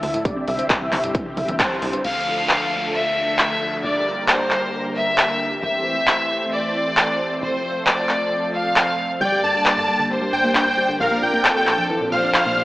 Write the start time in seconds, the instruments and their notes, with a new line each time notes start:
Already playing: analog synth pad D3 F3 A3 E4 A4, supersaw synth E5
0.03 analog synth bass D2, synth arpeggio sound D3, open hi-hat
0.14 synth arpeggio sound A2, closed hi-hat
0.25 synth arpeggio sound C3, analog synth pad D3 G3 C4 G4, supersaw synth D5, kick, closed hi-hat
0.36 synth arpeggio sound C4
0.48 analog synth bass C2, synth arpeggio sound C2, supersaw synth E5, open hi-hat
0.59 synth arpeggio sound C4, closed hi-hat
0.70 kick, clap, closed hi-hat
0.81 synth arpeggio sound C2, supersaw synth E5
0.92 analog synth bass C2, synth arpeggio sound C3, clap, open hi-hat, mid tom
1.04 synth arpeggio sound G2, closed hi-hat
1.15 synth arpeggio sound E3, kick, closed hi-hat
1.26 synth arpeggio sound C3
1.37 analog synth bass C2, synth arpeggio sound C2, supersaw synth E5, open hi-hat, mid tom
1.48 analog synth bass G1, synth arpeggio sound E3, closed hi-hat
1.60 synth arpeggio sound G3, supersaw synth C5, kick, clap, closed hi-hat
1.71 synth arpeggio sound C2
1.82 analog synth bass C2, synth arpeggio sound C3, open hi-hat
1.93 synth arpeggio sound G2, closed hi-hat
2.04 analog synth bass D2, analog synth pad D3 F3 A3 A4, violin section F5, crash, downlifter
2.49 clap
2.94 violin section E5
3.39 clap
3.83 analog synth bass G1, analog synth pad G3 A#3 G4 A#4, violin section D5
4.28 violin section C5, clap
4.51 clap
4.95 violin section E5
5.18 clap
5.62 analog synth bass A1, analog synth pad E3 A3 C4 C5, violin section E5
6.07 clap
6.52 violin section D5
6.97 clap
7.42 analog synth bass F1, analog synth pad F3 A4, violin section C5
7.86 violin section D5, clap
8.09 clap
8.54 violin section F5
8.76 clap
9.21 analog synth bass G1, analog synth pad G3 A#3 D4 G4 D5, synth arpeggio sound G3, violin section D5, supersaw synth G5
9.32 synth arpeggio sound G4
9.43 synth arpeggio sound G2, supersaw synth A5
9.55 synth arpeggio sound G4
9.66 clap
9.77 synth arpeggio sound G2, supersaw synth A5
9.88 synth arpeggio sound G3
9.99 synth arpeggio sound D3
10.10 synth arpeggio sound C4, violin section C5
10.22 synth arpeggio sound G3
10.33 synth arpeggio sound G2, supersaw synth G5
10.44 synth arpeggio sound A#3
10.55 synth arpeggio sound D4, supersaw synth G5, clap
10.66 synth arpeggio sound G2
10.78 synth arpeggio sound G3
10.89 synth arpeggio sound D3
11.00 analog synth bass A#1, synth arpeggio sound A#2, analog synth pad F3 C4, violin section A#4, supersaw synth F5
11.11 synth arpeggio sound A#3
11.22 synth arpeggio sound A#2, supersaw synth G5
11.34 synth arpeggio sound A#3
11.45 violin section A4, clap
11.56 synth arpeggio sound A#2, supersaw synth G5
11.67 synth arpeggio sound A#2, clap
11.78 synth arpeggio sound F2
11.90 synth arpeggio sound E3
12.01 synth arpeggio sound A#2
12.12 synth arpeggio sound A#2, violin section C5, supersaw synth F5
12.23 synth arpeggio sound D3
12.34 synth arpeggio sound F3, supersaw synth F5, clap
12.46 synth arpeggio sound A#2
12.57 synth arpeggio sound A#2